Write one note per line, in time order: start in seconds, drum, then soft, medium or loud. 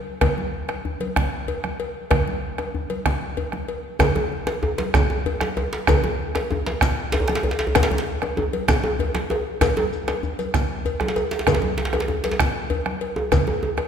0.21 bombo rim medium
0.21 bombo low medium
0.21 cowbell medium
0.21 djembe slap medium
0.21 djembe tone medium
0.21 low conga medium
0.21 djembe bass medium
0.38 high conga medium
0.53 high conga soft
0.69 bombo rim medium
0.69 cowbell soft
0.69 djembe slap medium
0.69 high conga soft
0.69 djembe tone soft
0.85 high conga soft
0.85 djembe bass medium
1.00 cowbell soft
1.00 high conga medium
1.16 bombo rim loud
1.16 bombo low medium
1.16 djembe slap medium
1.16 djembe tone medium
1.16 low conga medium
1.48 cowbell medium
1.48 djembe bass medium
1.64 bombo rim medium
1.64 djembe slap soft
1.64 djembe tone soft
1.64 high conga medium
1.80 cowbell soft
2.11 bombo rim medium
2.11 bombo low loud
2.11 cowbell medium
2.11 djembe slap medium
2.11 djembe tone medium
2.11 djembe bass medium
2.11 low conga medium
2.27 high conga medium
2.58 bombo rim medium
2.58 cowbell soft
2.58 djembe slap medium
2.58 djembe tone medium
2.75 djembe bass medium
2.90 bombo rim soft
2.90 cowbell soft
2.90 djembe slap soft
2.90 high conga medium
3.06 bombo rim medium
3.06 bombo low medium
3.06 djembe slap medium
3.06 high conga soft
3.06 djembe tone medium
3.06 low conga medium
3.21 djembe slap soft
3.21 high conga soft
3.37 bombo rim soft
3.37 cowbell soft
3.37 high conga soft
3.37 djembe bass medium
3.52 bombo rim medium
3.52 djembe slap medium
3.52 high conga medium
3.52 djembe tone medium
3.68 cowbell soft
3.68 djembe slap soft
3.99 bombo rim loud
3.99 bombo low loud
3.99 cowbell medium
3.99 djembe slap medium
3.99 djembe tone medium
3.99 djembe bass loud
3.99 djembe bass medium
3.99 low conga medium
3.99 shekere soft
4.15 djembe tone medium
4.15 high conga medium
4.32 high conga soft
4.47 bombo rim medium
4.47 cowbell medium
4.47 djembe slap medium
4.47 djembe tone medium
4.47 high conga soft
4.63 djembe tone medium
4.63 high conga soft
4.63 djembe bass medium
4.78 cowbell medium
4.78 djembe slap medium
4.78 high conga medium
4.94 bombo rim loud
4.94 bombo low loud
4.94 djembe slap medium
4.94 djembe tone medium
4.94 djembe bass loud
4.94 low conga medium
4.94 shekere medium
5.10 djembe tone medium
5.26 cowbell medium
5.26 djembe bass medium
5.41 bombo rim medium
5.41 djembe slap medium
5.41 djembe tone medium
5.41 high conga medium
5.57 cowbell medium
5.57 djembe tone medium
5.73 djembe slap medium
5.87 bombo rim loud
5.87 bombo low loud
5.87 cowbell medium
5.87 djembe slap medium
5.87 djembe tone medium
5.87 djembe bass medium
5.87 djembe bass loud
5.87 low conga medium
5.87 shekere medium
6.03 djembe tone medium
6.03 high conga medium
6.20 high conga soft
6.35 bombo rim medium
6.35 cowbell soft
6.35 djembe slap medium
6.35 djembe tone medium
6.35 high conga soft
6.51 djembe tone medium
6.51 high conga soft
6.51 djembe bass medium
6.66 cowbell soft
6.66 djembe slap medium
6.66 high conga medium
6.81 bombo rim loud
6.81 bombo low loud
6.81 djembe slap medium
6.81 djembe tone medium
6.81 low conga medium
6.81 shekere medium
7.12 cowbell soft
7.12 djembe slap loud
7.12 djembe bass medium
7.20 djembe bass medium
7.28 bombo rim medium
7.28 djembe slap medium
7.28 high conga medium
7.29 djembe slap medium
7.29 djembe tone medium
7.35 djembe slap loud
7.43 cowbell soft
7.43 djembe bass medium
7.51 djembe slap medium
7.59 djembe slap loud
7.67 djembe bass medium
7.75 bombo rim medium
7.75 bombo low medium
7.75 cowbell medium
7.75 djembe slap medium
7.75 djembe slap loud
7.75 djembe tone medium
7.75 low conga medium
7.75 djembe bass medium
7.75 shekere medium
7.83 djembe slap loud
7.91 high conga medium
7.91 djembe bass medium
7.98 djembe slap medium
8.07 high conga soft
8.22 bombo rim medium
8.22 cowbell soft
8.22 djembe slap medium
8.22 high conga soft
8.22 djembe tone medium
8.37 djembe tone loud
8.37 high conga soft
8.37 djembe bass medium
8.53 cowbell soft
8.53 high conga medium
8.68 bombo rim loud
8.68 bombo low loud
8.68 djembe slap medium
8.68 djembe tone medium
8.68 low conga medium
8.68 shekere medium
8.84 djembe tone loud
8.99 cowbell medium
8.99 djembe bass medium
9.15 bombo rim medium
9.15 djembe slap medium
9.15 djembe tone medium
9.15 high conga medium
9.30 cowbell medium
9.30 djembe tone loud
9.61 bombo rim medium
9.61 bombo low medium
9.61 cowbell medium
9.61 djembe slap medium
9.61 djembe tone medium
9.61 djembe bass medium
9.61 low conga medium
9.61 shekere medium
9.77 high conga medium
9.77 djembe tone loud
9.92 high conga soft
9.92 shekere soft
10.08 bombo rim medium
10.08 cowbell soft
10.08 djembe slap medium
10.08 djembe tone medium
10.08 shekere soft
10.23 djembe bass medium
10.23 shekere soft
10.39 bombo rim soft
10.39 cowbell soft
10.39 high conga medium
10.39 shekere soft
10.54 bombo rim medium
10.54 bombo low loud
10.54 djembe slap medium
10.54 high conga soft
10.54 djembe tone medium
10.54 low conga medium
10.54 shekere medium
10.70 djembe slap soft
10.70 high conga soft
10.85 cowbell medium
10.85 djembe slap soft
10.85 high conga soft
10.85 djembe bass medium
10.85 shekere soft
11.00 bombo rim medium
11.00 djembe tone loud
11.00 high conga medium
11.00 djembe bass soft
11.08 djembe slap medium
11.16 bombo rim soft
11.16 cowbell medium
11.16 djembe slap medium
11.16 djembe tone medium
11.16 high conga soft
11.16 shekere soft
11.31 djembe slap medium
11.31 shekere soft
11.39 djembe slap medium
11.47 bombo rim medium
11.47 bombo low loud
11.47 cowbell medium
11.47 djembe slap medium
11.47 djembe tone loud
11.47 djembe tone medium
11.47 low conga medium
11.47 djembe bass medium
11.47 shekere medium
11.54 djembe slap medium
11.62 djembe tone medium
11.62 high conga medium
11.78 djembe slap medium
11.78 high conga soft
11.85 djembe slap medium
11.93 bombo rim medium
11.93 cowbell medium
11.93 djembe slap medium
11.93 djembe tone loud
11.93 high conga soft
11.95 djembe tone medium
12.00 djembe slap medium
12.08 djembe tone medium
12.08 high conga soft
12.08 djembe bass medium
12.24 cowbell medium
12.24 djembe slap medium
12.24 high conga medium
12.31 djembe slap medium
12.40 bombo rim loud
12.40 bombo low loud
12.40 djembe slap medium
12.40 djembe tone medium
12.40 low conga medium
12.40 shekere medium
12.70 cowbell medium
12.70 djembe bass medium
12.86 bombo rim medium
12.86 djembe slap medium
12.86 high conga medium
12.86 djembe tone medium
13.01 cowbell soft
13.16 djembe tone medium
13.32 bombo rim medium
13.32 bombo low loud
13.32 cowbell medium
13.32 djembe slap medium
13.32 djembe tone medium
13.32 low conga medium
13.32 djembe bass medium
13.32 shekere medium
13.47 high conga medium
13.47 djembe tone medium
13.63 djembe tone medium
13.63 high conga soft
13.77 bombo rim medium
13.77 cowbell medium
13.77 djembe slap medium
13.77 djembe tone medium
13.77 high conga soft